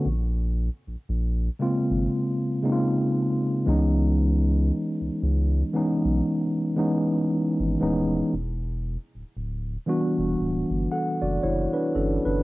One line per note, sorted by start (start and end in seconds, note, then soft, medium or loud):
0.06 0.69 A#1 medium
0.87 0.96 A#1 soft
1.09 1.49 A#1 medium
1.59 2.30 C#3 medium
1.59 2.30 G#3 medium
1.59 2.30 A#3 medium
1.59 2.31 C4 medium
1.59 2.31 F4 medium
1.91 2.08 G#1 medium
2.63 3.65 C#3 medium
2.63 3.65 G#3 medium
2.63 3.65 A#3 medium
2.63 3.66 C4 medium
2.63 2.72 D#4 medium
2.72 3.69 F4 medium
3.66 4.72 C#2 loud
3.66 5.34 E3 medium
3.66 5.34 G#3 medium
3.66 5.35 B3 medium
3.66 5.35 C#4 medium
3.66 5.35 D#4 medium
5.01 5.10 C#2 soft
5.23 5.63 C#2 medium
5.73 6.44 E3 medium
5.73 6.44 G#3 medium
5.73 6.44 B3 medium
5.73 6.45 C#4 medium
5.73 6.45 D#4 medium
6.05 6.22 B1 medium
6.76 7.47 E3 medium
6.76 7.47 G#3 medium
6.76 7.48 B3 medium
6.76 7.48 C#4 medium
6.76 7.48 D#4 medium
7.60 7.77 G#1 medium
7.80 8.22 D#1 medium
7.80 8.32 E3 medium
7.80 8.33 G#3 medium
7.80 8.33 B3 medium
7.80 8.33 C#4 medium
7.80 8.34 D#4 medium
8.33 8.97 E1 loud
9.15 9.24 D1 medium
9.37 9.77 D1 medium
9.86 10.57 E3 medium
9.86 10.58 G3 medium
9.86 10.58 B3 medium
9.86 10.58 D4 medium
9.86 10.59 F#4 medium
10.19 10.35 E1 medium
10.40 10.64 D1 medium
10.70 10.87 G1 medium
10.92 11.21 A4 soft
10.92 11.20 F#5 medium
11.22 11.39 F#1 medium
11.22 11.43 F#4 medium
11.22 11.42 D5 medium
11.43 11.67 F#1 loud
11.43 11.72 E4 medium
11.43 11.72 C#5 medium
11.73 11.94 D4 medium
11.73 11.94 B4 medium
11.95 12.19 G1 medium
11.95 12.24 C#4 medium
11.95 12.24 A4 medium
12.25 12.42 G1 medium
12.25 12.43 D4 soft
12.25 12.43 B4 medium